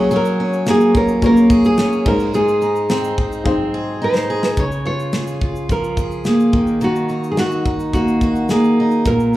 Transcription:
Already playing: upright piano A#3 C#4 F#4 G#4 C#5, steel-string acoustic guitar G#4, nylon-string guitar G#4
0.11 steel-string acoustic guitar F#3 G#4, shaker
0.16 nylon-string guitar A#4
0.25 shaker
0.40 steel-string acoustic guitar C#4
0.53 shaker
0.66 steel-string acoustic guitar A#3, nylon-string guitar G#4, snare, shaker
0.81 shaker
0.95 steel-string acoustic guitar C#4, nylon-string guitar A#4, kick, shaker
1.08 shaker
1.21 upright piano A#3 C#4 F#4 G#4 C#5, steel-string acoustic guitar A#3, kick, shaker
1.26 nylon-string guitar A#4
1.37 shaker
1.50 steel-string acoustic guitar G#4, kick, shaker
1.64 nylon-string guitar G#4, shaker
1.77 steel-string acoustic guitar C#4, snare, shaker
1.92 shaker
2.05 steel-string acoustic guitar G#2, upright piano D#4 G#4 C5, nylon-string guitar A#4, kick, crash
2.19 shaker
2.34 steel-string acoustic guitar G#2 G#4, nylon-string guitar G#4, shaker
2.48 shaker
2.62 steel-string acoustic guitar D#4, shaker
2.76 shaker
2.90 steel-string acoustic guitar C4, snare, shaker
3.04 shaker
3.18 steel-string acoustic guitar D#4, kick
3.32 shaker
3.44 steel-string acoustic guitar C4, upright piano D#4 G#4 C5, kick
3.74 steel-string acoustic guitar G#4
4.02 steel-string acoustic guitar D#4, nylon-string guitar C5
4.15 snare
4.30 steel-string acoustic guitar G#4
4.43 snare
4.48 nylon-string guitar A#4
4.57 steel-string acoustic guitar C#3, nylon-string guitar C#5, kick, shaker
4.72 shaker
4.85 steel-string acoustic guitar F4, nylon-string guitar C#5
5.00 shaker
5.13 steel-string acoustic guitar G#4, snare, shaker
5.27 shaker
5.41 steel-string acoustic guitar F4, kick
5.56 shaker
5.69 steel-string acoustic guitar F3, nylon-string guitar A#4, kick, shaker
5.84 shaker
5.97 steel-string acoustic guitar G#4, kick, shaker
6.11 shaker
6.25 steel-string acoustic guitar A#3, nylon-string guitar G#4, snare, shaker
6.40 shaker
6.53 steel-string acoustic guitar D#3, kick
6.67 shaker
6.81 steel-string acoustic guitar D#3, nylon-string guitar F#4, shaker
6.96 shaker
7.09 steel-string acoustic guitar D#4, shaker
7.23 shaker
7.32 nylon-string guitar G#4
7.37 steel-string acoustic guitar F#4, nylon-string guitar F#4, snare, shaker
7.51 shaker
7.66 steel-string acoustic guitar D#4, kick, shaker
7.80 shaker
7.93 steel-string acoustic guitar A#3, nylon-string guitar F#4, kick, shaker
8.08 shaker
8.21 steel-string acoustic guitar F#4, kick, shaker
8.36 shaker
8.49 steel-string acoustic guitar A#3, nylon-string guitar G#4, snare, shaker
8.64 shaker
8.80 steel-string acoustic guitar D#4
8.91 shaker
9.05 steel-string acoustic guitar A#2, nylon-string guitar A#4, kick, shaker
9.20 shaker
9.33 shaker

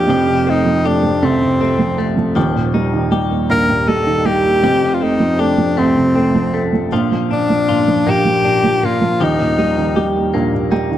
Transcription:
Already playing: felt piano F2 F3 D4 F4, clean electric guitar A#3 D4, tenor saxophone G4
0.08 felt piano F1 F2, clean electric guitar F3 G4
0.27 felt piano C3
0.46 felt piano A3, clean electric guitar C4, tenor saxophone D#4
0.66 felt piano F3
0.84 felt piano A3, tenor saxophone D4, clean electric guitar G4
1.03 felt piano F3
1.22 felt piano C2 C3, clean electric guitar A3, tenor saxophone C4
1.41 felt piano C3
1.60 felt piano A3, clean electric guitar C4
1.79 felt piano F3
1.97 felt piano A3, clean electric guitar A3
2.17 felt piano F3
2.36 felt piano D#1 D#2, clean electric guitar F3 G4
2.55 felt piano A#2
2.74 felt piano G3, clean electric guitar D#4
2.93 felt piano D#3
3.12 felt piano G3, clean electric guitar G4
3.31 felt piano A#3
3.50 felt piano A#1 A#2, clean electric guitar A#3, tenor saxophone A#4
3.69 felt piano A#2
3.87 felt piano G3, clean electric guitar D#4, tenor saxophone A4
4.07 felt piano D#3
4.25 felt piano G3, clean electric guitar A#3, tenor saxophone G4
4.44 felt piano A#3
4.63 felt piano F1 F2, clean electric guitar F3 G4
4.82 felt piano C3
4.94 tenor saxophone F4
5.01 felt piano A3, clean electric guitar C4, tenor saxophone D#4
5.20 felt piano F3
5.39 felt piano A3, tenor saxophone D4, clean electric guitar G4
5.58 felt piano F3
5.77 felt piano C2 C3, clean electric guitar A3, tenor saxophone C4
5.96 felt piano C3
6.15 felt piano A3, clean electric guitar C4
6.35 felt piano F3
6.54 clean electric guitar A3, felt piano A3
6.73 felt piano F3
6.92 felt piano A#1 A#2, clean electric guitar F3 F4
7.12 felt piano F3
7.30 felt piano A#2, clean electric guitar D4, tenor saxophone D4
7.50 felt piano F3
7.69 felt piano A#2, clean electric guitar F4
7.88 felt piano F3
8.07 felt piano A#1 A#2, clean electric guitar A#3, tenor saxophone G4
8.25 felt piano F3
8.44 felt piano A#2, clean electric guitar D4
8.64 felt piano F3
8.83 felt piano A#2, clean electric guitar A#3, tenor saxophone F4
9.02 felt piano F3
9.20 felt piano D#1 D#2, clean electric guitar F3 G4, tenor saxophone D#4
9.39 felt piano A#2
9.58 felt piano G3, clean electric guitar D#4
9.77 felt piano D#3
9.96 felt piano G3, clean electric guitar G4
10.16 felt piano A#3
10.34 felt piano A#1 A#2, clean electric guitar A#3
10.54 felt piano A#2
10.71 felt piano G3 G5, clean electric guitar D#4
10.91 felt piano D#3

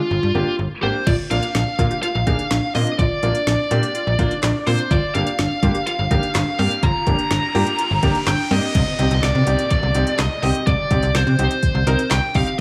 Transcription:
Already playing: lead electric guitar F4
0.11 fm bass G1
0.23 fm bass G2
0.35 fm bass G1, grand piano A#3 D4 G4
0.59 fm bass G1
0.82 fm bass G#1, grand piano A#3 D4 G4, lead electric guitar C5
1.06 fm bass A#1, synth arpeggio sound F4, lead electric guitar D5, kick, closed hi-hat, crash
1.31 fm bass A#1, grand piano A#3 D4 F4, synth arpeggio sound D4, lead electric guitar F5, closed hi-hat
1.43 closed hi-hat
1.55 fm bass A#1, synth arpeggio sound D4, snare, closed hi-hat
1.79 fm bass A#2, grand piano A#3 D4 F4, synth arpeggio sound F4, kick, closed hi-hat
1.91 synth arpeggio sound G4, closed hi-hat
2.03 synth arpeggio sound F4, lead electric guitar F5, closed hi-hat
2.15 fm bass A#1
2.27 fm bass A#1, grand piano A#3 D4 G#4, synth arpeggio sound D#4, kick, closed hi-hat
2.39 closed hi-hat
2.51 fm bass A#1, synth arpeggio sound D4, snare, closed hi-hat
2.75 fm bass A#2, grand piano A#3 D4 F4, synth arpeggio sound C4, lead electric guitar D#5, open hi-hat
2.87 closed hi-hat
2.99 fm bass A#1, synth arpeggio sound F4, lead electric guitar D5, kick, closed hi-hat
3.23 fm bass A#1, grand piano A#3 D4 F4, synth arpeggio sound D4, closed hi-hat
3.35 closed hi-hat
3.47 fm bass A#1, synth arpeggio sound D4, snare, closed hi-hat
3.71 fm bass A#2, grand piano A#3 D4 G4, synth arpeggio sound F4, closed hi-hat
3.83 synth arpeggio sound G4, closed hi-hat
3.95 synth arpeggio sound F4, closed hi-hat
4.07 fm bass A#1
4.19 fm bass A#1, grand piano A#3 D4 F4, synth arpeggio sound D#4, kick, closed hi-hat
4.31 closed hi-hat
4.43 fm bass A#1, synth arpeggio sound D4, snare, clap, closed hi-hat
4.67 fm bass A#2, grand piano A#3 D4 F4, synth arpeggio sound C4, lead electric guitar C5, open hi-hat
4.79 closed hi-hat
4.91 fm bass G1, synth arpeggio sound F4, lead electric guitar D5, kick, closed hi-hat, riser
5.15 fm bass G1, grand piano A#3 D4 G4, synth arpeggio sound D4, lead electric guitar F5, closed hi-hat
5.27 closed hi-hat
5.39 fm bass G1, synth arpeggio sound D4, snare, closed hi-hat
5.63 fm bass G2, grand piano A#3 D4 G4, synth arpeggio sound F4, kick, closed hi-hat
5.75 synth arpeggio sound G4, closed hi-hat
5.87 synth arpeggio sound F4, lead electric guitar F5, closed hi-hat
5.99 fm bass G1
6.11 fm bass G1, grand piano A#3 D4 G4, synth arpeggio sound D#4, kick, closed hi-hat
6.23 closed hi-hat
6.35 fm bass G1, synth arpeggio sound D4, snare, clap, closed hi-hat
6.59 fm bass G2, grand piano A#3 D4 G4, synth arpeggio sound C4, lead electric guitar F5, open hi-hat
6.71 closed hi-hat
6.83 fm bass G1, synth arpeggio sound F4, lead electric guitar A#5, kick, closed hi-hat
7.07 fm bass G1, grand piano A#3 D4 G4, synth arpeggio sound D4, kick, closed hi-hat
7.19 closed hi-hat
7.31 fm bass G1, synth arpeggio sound D4, snare, closed hi-hat
7.55 fm bass G2, grand piano A#3 D4 G4, synth arpeggio sound F4, open hi-hat
7.67 synth arpeggio sound G4, closed hi-hat
7.79 synth arpeggio sound F4, closed hi-hat
7.91 fm bass G1
8.03 fm bass G1, grand piano A#3 D4 G4, synth arpeggio sound D#4, kick, closed hi-hat
8.15 closed hi-hat
8.27 fm bass G1, synth arpeggio sound D4, lead electric guitar G5, snare, clap, closed hi-hat
8.51 fm bass G2, grand piano A#3 D4 G4, synth arpeggio sound C4, lead electric guitar D#5, open hi-hat
8.63 closed hi-hat
8.75 fm bass C2, kick, closed hi-hat, crash, downlifter
8.99 fm bass C2, grand piano C4 D#4 G4, closed hi-hat
9.11 fm bass C2, closed hi-hat
9.23 fm bass C2, lead electric guitar D5, snare, closed hi-hat
9.35 fm bass C3
9.47 fm bass C2, grand piano C4 D#4 G4, closed hi-hat
9.59 closed hi-hat
9.71 lead electric guitar D5, kick, closed hi-hat
9.83 fm bass C2
9.95 fm bass C2, grand piano C4 D#4 G4, closed hi-hat
10.07 closed hi-hat
10.19 fm bass C2, lead electric guitar D#5, snare, clap, closed hi-hat
10.43 fm bass C2, grand piano C4 D#4 G4, lead electric guitar D#5, open hi-hat
10.55 closed hi-hat
10.67 fm bass C2, lead electric guitar D5, kick, closed hi-hat
10.91 fm bass C2, grand piano C4 D#4 G4, kick, closed hi-hat
11.03 fm bass C2, closed hi-hat
11.15 fm bass C2, lead electric guitar C5, snare, closed hi-hat
11.27 fm bass C3
11.39 fm bass C2, grand piano C4 D#4 G4, closed hi-hat
11.51 closed hi-hat
11.63 kick, closed hi-hat
11.75 fm bass C2
11.87 fm bass C2, grand piano C4 D#4 A#4, closed hi-hat
11.99 closed hi-hat
12.11 fm bass C2, lead electric guitar G5, snare, clap, closed hi-hat
12.34 fm bass C2, grand piano C4 D#4 G4, lead electric guitar F5, kick, open hi-hat
12.47 closed hi-hat

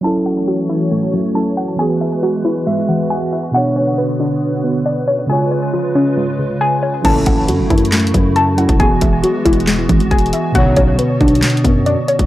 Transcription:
0.01 analog synth pad E3 A3 F#4 C#5, synth keys F#3 C#4 E4, synth pluck A5
0.07 synth keys A4
0.26 synth pluck F#5
0.48 synth pluck F#4
0.69 synth pluck E4
0.91 synth pluck A3
1.13 synth pluck F#3
1.34 synth keys F#3 C#4 E4 A4, synth pluck A5
1.57 synth pluck F#5
1.76 synth keys E3 B3 F#4, analog synth pad E3 G#3 F#4 B4, synth pluck G#5
1.82 synth keys G#4
2.01 synth pluck E5
2.23 synth pluck F#4
2.45 synth pluck E4, synth keys B4
2.67 synth pluck G#3, synth keys E5
2.89 synth pluck E3, synth keys F#5
3.10 synth keys F#5, synth pluck G#5
3.33 synth pluck E5
3.51 synth keys B2 B3 D4, analog synth pad D3 B3 B4, synth pluck F#5
3.57 synth keys C#5
3.76 synth pluck C#5
3.98 synth pluck B4
4.20 synth pluck D4
4.64 synth pluck B3
4.86 synth pluck D5
5.08 synth pluck C#5
5.27 synth keys C#3 G#3 F4, analog synth pad C#3 G#3 F4, synth pluck G#5
5.32 synth keys C#5
5.51 synth pluck C#5
5.73 synth pluck F4
5.95 synth pluck C#4
6.17 synth pluck G#3
6.39 synth pluck C#3
6.61 synth pluck G#5
6.83 synth pluck C#5
7.02 808-style bass F#1, analog polysynth C#2 A2 E3, analog synth pad C#3 A3 E4 F#4, synth keys F#3 C#4 E4, synth pluck A5, kick, closed hi-hat, crash
7.07 synth keys A4
7.26 808-style bass F#1, synth pluck F#5, kick, closed hi-hat
7.48 808-style bass F#2, synth pluck F#4, closed hi-hat
7.59 808-style bass F#1
7.70 808-style bass F#2, synth pluck E4, kick, closed hi-hat
7.78 closed hi-hat
7.85 closed hi-hat
7.92 synth pluck A3, snare, clap, closed hi-hat
8.00 closed hi-hat
8.07 closed hi-hat
8.14 808-style bass F#2, synth pluck F#3, kick, closed hi-hat
8.36 synth pluck A5, closed hi-hat
8.57 synth keys F#3 C#4 E4 A4, synth pluck F#5, closed hi-hat
8.69 808-style bass E1, kick, closed hi-hat
8.77 synth keys E3 B3 F#4, analog synth pad E3 G#3 B3, synth pluck G#5, kick, closed hi-hat
8.83 synth keys G#4
9.01 808-style bass E1, synth pluck E5, kick, closed hi-hat
9.24 synth pluck F#4, closed hi-hat
9.45 808-style bass E1, synth pluck E4, kick, closed hi-hat
9.53 closed hi-hat
9.60 closed hi-hat
9.67 synth pluck G#3, snare, clap, closed hi-hat
9.89 808-style bass G#1, synth pluck E3, kick, closed hi-hat
10.00 closed hi-hat
10.11 808-style bass E1, synth pluck G#5, kick, closed hi-hat
10.19 closed hi-hat
10.26 closed hi-hat
10.33 synth pluck E5, closed hi-hat
10.52 808-style bass B1, analog polysynth D2 C#3 F#3, synth keys B2 D3 B3, analog synth pad B2 B3, synth pluck F#5, kick, closed hi-hat
10.58 synth keys C#5
10.77 808-style bass B1, synth pluck C#5, kick, closed hi-hat
10.99 synth pluck B4, closed hi-hat
11.21 808-style bass B1, synth pluck D4, kick, closed hi-hat
11.28 closed hi-hat
11.35 closed hi-hat
11.42 snare, clap, closed hi-hat
11.50 closed hi-hat
11.57 closed hi-hat
11.64 808-style bass F#2, synth pluck B3, kick, closed hi-hat
11.86 synth pluck D5, closed hi-hat
12.08 synth pluck C#5, closed hi-hat
12.19 808-style bass B1, kick, closed hi-hat

